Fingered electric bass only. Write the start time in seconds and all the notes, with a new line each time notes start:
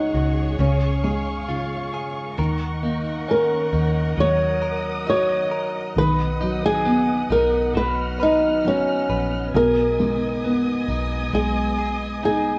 Already playing: C#2
0.14 C#2
0.59 C#2
2.38 D#2
3.73 D#2
4.18 D#2
5.96 B1
7.30 B1
7.76 B1
9.09 A#1
9.54 B1
10.88 B1
11.33 B1